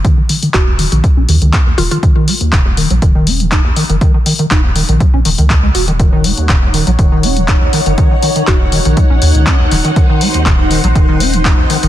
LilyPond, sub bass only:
\new Staff \with { instrumentName = "Sub bass" } { \clef bass \time 4/4 \key c \phrygian \tempo 4 = 121 r4 ees,,8. bes,,16 r16 bes,,16 ees,16 des,16 r8 ees,,16 r16 | r4 ees,,8. bes,,16 ees,,4~ ees,,16 r8 ges,,16 | r4 ees,,8. bes,,16 r16 bes,,16 ees,,16 des,8. ees,,8~ | ees,,8. r16 ees,,8. bes,,16 ees,,4~ ees,,16 r8 ges,,16 |
r4 ees,,8. bes,,16 r16 bes,,16 ees,16 des,16 r8 ees,,16 r16 | r4 ees,,8. bes,,16 ees,,4~ ees,,16 r8 ges,,16 | }